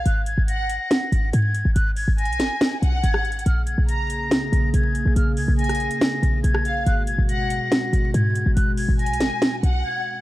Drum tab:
HH |x-----------x-----------x-----------x-----------x-----------x-----------x-----------x-----------|x-----------o-----------x---x---x---x-----------x-----------x-----------x-----------x---x---x---|x-----------x-----------x-----------x-----------x-----------x-----------x-----------x-----------|x-----------o-----------x--x--x--x--x-----x-----x-----------x-----------x-----------x-----------|
SD |------------------------------------------------o-----------------------------------------------|------------------------------------o-----------o-----------------------------r-----------------|------------------------------------------------o-----------------------------------------------|------------------------------r-----------------o-----------------------------r-----------------|

HH |x-----------x-----------x-----------x-----------x-----------x-----------x-----------x-----------|x-----------o-----------x---x---x---x-----------x-----------x-----------------------------------|
SD |------------------------------------------------o-----------------------------------------------|------------------------------------o-----------o-----------------------------------------------|